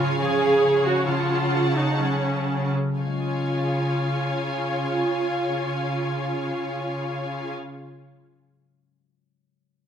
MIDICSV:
0, 0, Header, 1, 6, 480
1, 0, Start_track
1, 0, Key_signature, -5, "major"
1, 0, Tempo, 430108
1, 1190, Time_signature, 4, 2, 24, 8
1, 1190, Tempo, 453858
1, 2150, Tempo, 495868
1, 9797, End_track
2, 0, Start_track
2, 0, Title_t, "Violin section"
2, 0, Program_c, 0, 48
2, 0, Note_on_c, 0, 80, 39
2, 1148, Note_off_c, 0, 80, 0
2, 1198, Note_on_c, 0, 81, 38
2, 2853, Note_off_c, 0, 81, 0
2, 3132, Note_on_c, 0, 80, 27
2, 7522, Note_off_c, 0, 80, 0
2, 9797, End_track
3, 0, Start_track
3, 0, Title_t, "Violin section"
3, 0, Program_c, 1, 48
3, 0, Note_on_c, 1, 73, 37
3, 0, Note_on_c, 1, 77, 40
3, 1148, Note_off_c, 1, 77, 0
3, 1201, Note_on_c, 1, 78, 33
3, 2854, Note_off_c, 1, 73, 0
3, 2855, Note_off_c, 1, 78, 0
3, 3132, Note_on_c, 1, 77, 24
3, 3133, Note_on_c, 1, 73, 23
3, 7522, Note_off_c, 1, 77, 0
3, 7523, Note_off_c, 1, 73, 0
3, 9797, End_track
4, 0, Start_track
4, 0, Title_t, "Viola section"
4, 0, Program_c, 2, 48
4, 0, Note_on_c, 2, 65, 55
4, 216, Note_off_c, 2, 65, 0
4, 223, Note_on_c, 2, 68, 56
4, 930, Note_off_c, 2, 68, 0
4, 953, Note_on_c, 2, 66, 47
4, 1194, Note_off_c, 2, 66, 0
4, 1202, Note_on_c, 2, 65, 52
4, 1895, Note_off_c, 2, 65, 0
4, 1916, Note_on_c, 2, 63, 40
4, 2155, Note_off_c, 2, 63, 0
4, 2160, Note_on_c, 2, 61, 37
4, 2887, Note_off_c, 2, 61, 0
4, 3127, Note_on_c, 2, 65, 35
4, 7517, Note_off_c, 2, 65, 0
4, 9797, End_track
5, 0, Start_track
5, 0, Title_t, "Harp"
5, 0, Program_c, 3, 46
5, 0, Note_on_c, 3, 49, 38
5, 0, Note_on_c, 3, 61, 29
5, 0, Note_on_c, 3, 65, 35
5, 0, Note_on_c, 3, 68, 33
5, 231, Note_on_c, 3, 53, 30
5, 448, Note_off_c, 3, 61, 0
5, 462, Note_on_c, 3, 61, 27
5, 688, Note_off_c, 3, 65, 0
5, 702, Note_on_c, 3, 65, 32
5, 932, Note_off_c, 3, 68, 0
5, 946, Note_on_c, 3, 68, 28
5, 1180, Note_off_c, 3, 49, 0
5, 1194, Note_on_c, 3, 49, 34
5, 1209, Note_off_c, 3, 65, 0
5, 1209, Note_off_c, 3, 68, 0
5, 1212, Note_off_c, 3, 53, 0
5, 1415, Note_off_c, 3, 61, 0
5, 1428, Note_on_c, 3, 61, 26
5, 1667, Note_on_c, 3, 66, 30
5, 1908, Note_on_c, 3, 69, 27
5, 2158, Note_on_c, 3, 54, 25
5, 2378, Note_off_c, 3, 61, 0
5, 2390, Note_on_c, 3, 61, 20
5, 2623, Note_off_c, 3, 66, 0
5, 2635, Note_on_c, 3, 66, 22
5, 2868, Note_off_c, 3, 69, 0
5, 2880, Note_on_c, 3, 69, 19
5, 3117, Note_off_c, 3, 49, 0
5, 3129, Note_on_c, 3, 49, 20
5, 3144, Note_off_c, 3, 69, 0
5, 3148, Note_off_c, 3, 66, 0
5, 3149, Note_off_c, 3, 54, 0
5, 3200, Note_on_c, 3, 56, 19
5, 3254, Note_off_c, 3, 61, 0
5, 3266, Note_on_c, 3, 61, 21
5, 3334, Note_on_c, 3, 68, 20
5, 3401, Note_on_c, 3, 73, 21
5, 7519, Note_off_c, 3, 49, 0
5, 7590, Note_off_c, 3, 56, 0
5, 7656, Note_off_c, 3, 61, 0
5, 7724, Note_off_c, 3, 68, 0
5, 7791, Note_off_c, 3, 73, 0
5, 9797, End_track
6, 0, Start_track
6, 0, Title_t, "Cello section"
6, 0, Program_c, 4, 48
6, 0, Note_on_c, 4, 49, 42
6, 2852, Note_off_c, 4, 49, 0
6, 3132, Note_on_c, 4, 49, 26
6, 7522, Note_off_c, 4, 49, 0
6, 9797, End_track
0, 0, End_of_file